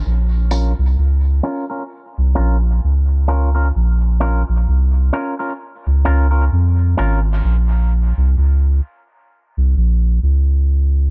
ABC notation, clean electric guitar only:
X:1
M:4/4
L:1/16
Q:"Swing 16ths" 1/4=65
K:Bbm
V:1 name="Clean electric guitar"
z2 [DFB] z3 [DFB] [DFB] z2 [DFB] z3 [DFB] [DFB] | z2 [DFB] z3 [DFB] [DFB] z2 [DFB] [DFB] z2 [DFB] z | z16 |]